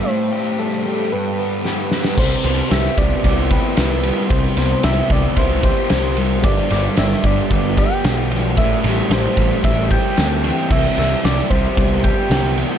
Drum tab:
CC |----------------|x---------------|----------------|----------------|
RD |----------------|--x-x-x-x-x-x-x-|x-x-x-x-x-x-x-x-|x-x-x-x-x-x-x-x-|
SD |------------o-oo|----oo------o---|--o-o-------o---|--o-oo------o---|
BD |----------------|o-----o-o-o-----|o-----o-o-o-----|o-----o-o-o-----|

CC |----------------|x---------------|
RD |x-x-x-x-x-x-x-x-|--x-x-x-x-x-x-x-|
SD |--o-o-------o---|--o-oo------o---|
BD |o-----o-o-o-----|o-----o-o-o-----|